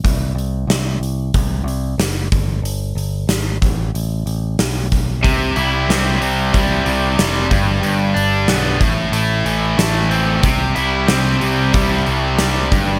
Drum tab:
HH |oooooooo|oooooooo|oooooooo|oooooooo|
SD |--o---o-|--o---o-|--o---o-|--o---o-|
BD |o---o--o|---o---o|o---o--o|---o----|

HH |oooooooo|
SD |--o---o-|
BD |o---o--o|